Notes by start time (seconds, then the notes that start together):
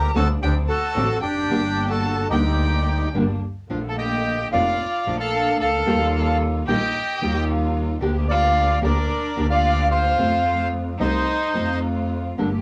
Already playing: D2 G3 A#3 D4 G4 A#4 A#5
0.14 D2 D3 G3 A3 A#3 C4 D4 F#4 A4 A5
0.41 D2 F#3 C4 D4 G4 G5
0.69 F#4 A4 A5
0.95 A1 D3 F#3 A3 C4 D4 F#4
1.22 F1 D4 G4 G5
1.49 G1 D3 G3 A#3 D4 G4
1.90 F#4 A4 A5
2.30 D2 D3 G3 A#3 D4 D#4 G4 D5 G5
3.13 G1 D3 G3 A#3 D4 G4
3.68 A#1 D3 F3 A3 A#3 D4 F4
3.89 A4 A5
3.98 G4 D#5 G5
4.51 F1 F3 A3 A#3 D4 F4 D5 F5
5.06 A#1 F3 A3 A#3 D4 F4
5.20 A4 F5 A5
5.60 C#2 A4 F5 A5
5.86 D#2 D#3 G3 A#3 D#4 F4 G4
6.67 A#1 D#3 G3 A#3 D#4 F4 G4 D#5 G5
7.20 D#2 D#3 G3 A#3 D#4 F4 G4
8.01 D2 D3 A#3 D4 G4
8.29 F4 D5 F5
8.81 D2 D3 A#3 D4 G4 A#4 D5
9.36 D2 D3 A#3 D4 G4
9.50 F4 D5 F5
9.91 F4 C5 F5
10.18 F2 C3 F3 A3 C4 F4
10.99 C2 C3 F3 A3 C4 D#4 F4 C5 D#5
11.54 F2 C3 F3 A3 C4 F4
12.38 G1 D3 G3 A3 A#3 D4 G4 A4